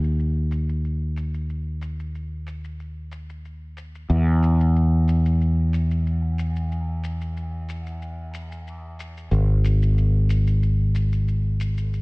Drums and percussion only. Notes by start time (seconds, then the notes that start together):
0.04 shaker
0.19 shaker
0.51 open hi-hat, shaker
0.69 shaker
0.85 shaker
1.16 open hi-hat, shaker
1.34 shaker
1.50 shaker
1.81 open hi-hat, shaker
2.00 shaker
2.15 shaker
2.47 open hi-hat, shaker
2.64 shaker
2.80 shaker
3.11 open hi-hat, shaker
3.30 shaker
3.45 shaker
3.77 open hi-hat, shaker
3.95 shaker
4.11 shaker
4.43 open hi-hat, shaker
4.61 shaker
4.76 shaker
5.08 open hi-hat, shaker
5.26 shaker
5.41 shaker
5.73 open hi-hat, shaker
5.91 shaker
6.07 shaker
6.38 open hi-hat, shaker
6.56 shaker
6.72 shaker
7.04 open hi-hat, shaker
7.21 shaker
7.37 shaker
7.69 open hi-hat, shaker
7.87 shaker
8.02 shaker
8.34 open hi-hat, shaker
8.52 shaker
8.67 shaker
8.99 open hi-hat, shaker
9.17 shaker
9.33 shaker
9.64 open hi-hat, shaker
9.82 shaker
9.98 shaker
10.29 open hi-hat, shaker
10.47 shaker
10.63 shaker
10.95 open hi-hat, shaker
11.13 shaker
11.28 shaker
11.60 open hi-hat, shaker
11.78 shaker
11.94 shaker